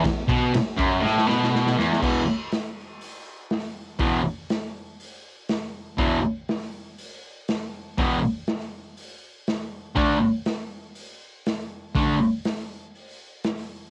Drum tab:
CC |----------------|x---------------|----------------|----------------|
RD |x-x-x-x---------|----------------|----------------|----------------|
HH |----------------|----o---o---o---|o---o---o---o---|o---o---o---o---|
SD |o---o---oooooooo|----o-------o---|----o-------o---|----o-------o---|
BD |o-o---o---------|o---------------|o---------------|o---------------|

CC |----------------|----------------|----------------|
RD |----------------|----------------|----------------|
HH |o---o---o---o---|o---o---o---o---|o---o---o---o---|
SD |----o-------o---|----o-------o---|----o-------o---|
BD |o---------------|o---------------|o---------------|